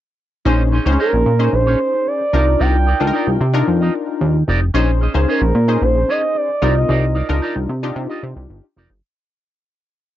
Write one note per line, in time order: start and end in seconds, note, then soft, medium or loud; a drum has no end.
0.45 0.80 A#1 loud
0.45 0.61 C#4 medium
0.45 0.77 C#4 medium
0.45 0.77 D#4 medium
0.45 0.62 D#4 medium
0.45 0.77 G#4 medium
0.45 0.62 G#4 loud
0.45 0.77 C5 medium
0.45 0.62 C5 loud
0.72 0.85 C#4 medium
0.72 0.85 D#4 medium
0.72 0.85 G#4 medium
0.72 0.85 C5 medium
0.85 0.97 C#2 medium
0.85 0.92 C4 medium
0.85 0.98 C#4 soft
0.85 1.27 D#4 medium
0.85 0.99 D#4 medium
0.85 1.27 G#4 medium
0.85 0.99 G#4 medium
0.85 1.28 C5 medium
0.85 0.98 C#5 medium
0.92 1.30 C#4 medium
0.99 1.15 C#4 medium
0.99 1.13 D#4 medium
0.99 1.12 G#4 medium
0.99 1.55 A#4 medium
0.99 1.12 C5 medium
1.13 1.24 A#1 loud
1.13 muted clean electric guitar stroke soft
1.26 1.49 A#2 medium
1.26 muted clean electric guitar stroke soft
1.39 2.22 C#4 medium
1.39 1.52 C#4 medium
1.39 2.22 D#4 medium
1.39 1.52 D#4 medium
1.39 2.22 G#4 medium
1.39 1.52 G#4 medium
1.39 1.52 C5 medium
1.39 2.22 C5 medium
1.53 1.76 A#1 medium
1.53 2.09 C5 medium
1.53 muted clean electric guitar stroke soft
1.66 1.79 C#4 medium
1.66 1.79 D#4 medium
1.66 1.79 G#4 medium
1.66 1.80 C#5 medium
1.80 muted clean electric guitar stroke soft
1.93 muted clean electric guitar stroke soft
2.06 2.62 D5 loud
2.06 muted clean electric guitar stroke soft
2.20 muted clean electric guitar stroke soft
2.33 2.56 C2 medium
2.33 2.87 D4 medium
2.33 2.49 D#4 medium
2.33 2.87 D#4 medium
2.33 2.87 F4 medium
2.33 2.46 F4 medium
2.33 2.87 A#4 medium
2.33 2.46 A#4 medium
2.33 2.45 D5 medium
2.46 muted clean electric guitar stroke soft
2.59 2.94 C2 loud
2.59 2.76 D#4 medium
2.59 2.76 F4 medium
2.59 2.76 A#4 medium
2.59 2.77 D5 loud
2.59 3.41 G5 loud
2.87 2.99 D#4 medium
2.87 3.00 F4 medium
2.87 2.99 A#4 medium
2.87 2.99 D5 medium
3.00 3.12 C#2 medium
3.00 3.42 D4 medium
3.00 3.42 D#4 medium
3.00 3.12 D#4 medium
3.00 3.42 F4 medium
3.00 3.13 F4 medium
3.00 3.07 A4 medium
3.00 3.13 A#4 medium
3.00 3.12 D#5 medium
3.07 3.45 A#4 medium
3.13 3.29 D#4 medium
3.13 3.27 F4 medium
3.13 3.27 A#4 medium
3.13 3.26 D5 medium
3.27 3.39 C2 medium
3.27 muted clean electric guitar stroke soft
3.41 3.63 C3 medium
3.41 muted clean electric guitar stroke soft
3.53 4.36 D4 medium
3.53 4.37 D#4 medium
3.53 3.66 D#4 medium
3.53 4.37 F4 medium
3.53 3.67 F4 medium
3.53 4.37 A#4 loud
3.53 3.67 A#4 medium
3.53 3.66 D5 medium
3.68 3.90 F2 medium
3.68 muted clean electric guitar stroke medium
3.81 3.93 D#4 medium
3.81 3.93 F4 medium
3.81 3.94 A#4 medium
3.81 3.95 D#5 medium
3.94 muted clean electric guitar stroke soft
4.07 muted clean electric guitar stroke medium
4.21 4.43 D#2 loud
4.21 muted clean electric guitar stroke soft
4.34 muted clean electric guitar stroke medium
4.48 4.70 F1 loud
4.48 4.63 D#4 medium
4.48 4.61 F4 medium
4.48 4.60 A#4 loud
4.48 4.60 D5 loud
4.61 muted clean electric guitar stroke soft
4.74 5.08 A#1 loud
4.74 4.90 C#4 medium
4.74 5.05 C#4 medium
4.74 5.05 D#4 medium
4.74 4.90 G#4 loud
4.74 5.06 G#4 medium
4.74 5.06 C5 loud
4.74 4.91 C5 medium
4.74 4.91 D#5 loud
5.01 5.14 C#4 medium
5.01 5.14 G#4 medium
5.01 5.14 C5 medium
5.01 5.14 D#5 medium
5.14 5.26 C#2 medium
5.14 5.56 C#4 medium
5.14 5.27 C#4 medium
5.14 5.56 D#4 medium
5.14 5.56 G#4 medium
5.14 5.28 G#4 medium
5.14 5.56 C5 medium
5.14 5.27 C5 medium
5.14 5.27 F5 medium
5.28 5.44 C#4 medium
5.28 5.42 G#4 medium
5.28 5.84 A#4 medium
5.28 5.41 C5 loud
5.28 5.41 D#5 medium
5.41 5.53 A#1 loud
5.41 muted clean electric guitar stroke medium
5.55 5.77 A#2 medium
5.55 muted clean electric guitar stroke soft
5.68 6.51 C#4 medium
5.68 5.81 C#4 medium
5.68 6.51 D#4 medium
5.68 6.51 G#4 medium
5.68 5.81 G#4 soft
5.68 5.81 C5 medium
5.68 6.51 C5 medium
5.68 5.80 D#5 medium
5.82 6.04 A#1 loud
5.82 6.12 C5 loud
5.82 muted clean electric guitar stroke soft
5.95 muted clean electric guitar stroke medium
6.08 6.24 C#4 medium
6.08 6.22 G#4 medium
6.08 6.21 C5 medium
6.08 6.20 D#5 medium
6.08 6.38 D#5 loud
6.22 muted clean electric guitar stroke soft
6.35 6.78 D5 loud
6.35 muted clean electric guitar stroke soft
6.48 muted clean electric guitar stroke soft
6.62 6.85 C2 loud
6.62 7.15 C4 medium
6.62 7.16 D#4 medium
6.62 6.78 D#4 medium
6.62 7.16 F4 medium
6.62 6.75 F4 medium
6.62 7.16 A#4 medium
6.62 6.75 A#4 medium
6.62 6.74 D5 medium
6.75 7.30 D#5 loud
6.75 muted clean electric guitar stroke soft
6.88 7.23 C2 loud
6.88 7.04 D#4 medium
6.88 7.05 F4 medium
6.88 7.05 A#4 medium
6.88 7.05 D5 medium
7.15 7.28 D#4 medium
7.15 7.28 F4 medium
7.15 7.28 A#4 medium
7.15 7.28 D5 medium
7.29 7.40 C#2 medium
7.29 7.70 D4 medium
7.29 7.70 D#4 medium
7.29 7.41 D#4 medium
7.29 7.70 F4 medium
7.29 7.42 F4 medium
7.29 7.42 A#4 medium
7.29 7.71 A#4 medium
7.29 7.41 D#5 medium
7.42 7.58 D#4 medium
7.42 7.56 F4 medium
7.42 7.55 A#4 medium
7.42 7.54 D5 medium
7.56 7.67 C2 loud
7.56 muted clean electric guitar stroke soft
7.69 7.92 C3 medium
7.69 muted clean electric guitar stroke soft
7.83 8.65 D4 medium
7.83 8.65 D#4 medium
7.83 7.95 D#4 soft
7.83 8.65 F4 medium
7.83 7.96 F4 medium
7.83 8.66 G4 loud
7.83 7.95 A#4 medium
7.83 7.95 D5 medium
7.96 8.07 C3 loud
7.96 muted clean electric guitar stroke soft
8.09 8.22 D#4 medium
8.09 8.23 F4 medium
8.09 8.23 A#4 medium
8.09 8.24 D#5 medium
8.23 8.34 C3 loud
8.23 muted clean electric guitar stroke soft
8.36 8.48 C2 medium
8.36 muted clean electric guitar stroke soft
8.50 8.61 G1 loud
8.50 muted clean electric guitar stroke soft
8.63 muted clean electric guitar stroke soft
8.76 8.88 F1 medium
8.76 8.92 D#4 medium
8.76 8.90 F4 medium
8.76 8.90 A#4 medium
8.76 8.89 D5 medium
8.90 9.01 G1 medium
8.90 muted clean electric guitar stroke soft